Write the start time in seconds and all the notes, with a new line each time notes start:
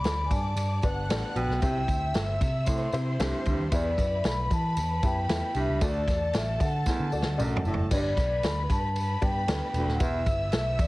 Already playing: B3 D4 G4 B4 D5 D6
0.04 D2 B5, snare, ride, tambourine
0.25 G#5
0.31 G2 A5, kick, ride, tambourine
0.56 G2, ride, tambourine
0.82 G1 B3 D4 G4 B4 D5 F#5 F#6, kick, ride, tambourine
1.09 A1 B3 D4 G4 B4 D5, snare, ride, tambourine
1.35 A#1 B2 G5, ride, tambourine
1.49 B1, snare
1.62 C2 C3 C4 E4 G4 C5 E5 G5 E6, kick, ride, tambourine
1.88 D2, kick, ride, tambourine
2.14 G1 E5, snare, ride, tambourine
2.41 C3, kick, ride, tambourine
2.66 A2 C5 C6, kick, ride, tambourine
2.92 C3 C4 E4 G4 C5 E5, ride, tambourine
3.19 C2 G2 C4 E4 G4 C5 E5, snare, ride, tambourine
3.46 D2 G2, kick, ride, tambourine
3.59 D#2
3.72 E2 B3 E4 G4 B4 D5 E5 B5, kick, ride, tambourine
3.98 F#2, kick, ride, tambourine
4.24 B1 B5, snare, ride, tambourine
4.51 E3 A5, kick, ride, tambourine
4.77 E2, ride, tambourine
4.98 A5
5.03 F#2 B3 E4 G4 B4 E5 G5, kick, ride, tambourine
5.29 E2 B3 E4 G4 B4 E5, snare, ride, tambourine
5.55 C2 G2 E5, ride, tambourine
5.68 C#2
5.81 D2 A3 D4 F#4 A4 D5 A5, kick, ride, tambourine
6.07 E2, kick, snare, ride, tambourine
6.33 A1 E5, snare, ride, tambourine
6.60 D3 F#5, kick, ride, tambourine
6.86 E2, kick, snare, tambourine
7.00 D3
7.12 D2 A3 D4 F#4 A4 D5, tambourine
7.22 D2, snare
7.38 B1 F#2 A3 D4 F#4 A4 D5 F#5, mid tom, tambourine
7.56 floor tom
7.64 F#1 A2 A5, tambourine
7.74 floor tom
7.91 G1 G2 B3 D4 G4 B4 C#5 D5 B5, kick, crash, tambourine
7.97 D5
8.17 B1, kick, snare, ride, tambourine
8.43 D2 B5, snare, ride, tambourine
8.69 G2 A5, kick, ride, tambourine
8.96 ride, tambourine
9.21 G2 B3 D4 G4 B4 D5 G5, kick, ride, tambourine
9.48 D2 B3 D4 G4 B4 D5, snare, ride, tambourine
9.74 E1 D2, ride, tambourine
9.87 D#1, snare
9.94 F#5
10.00 E2 B3 E4 G4 B4 E5 E6, kick, ride, tambourine
10.26 G1, kick, ride, tambourine
10.52 B1, snare, ride, tambourine
10.79 E2 D5, kick, ride, tambourine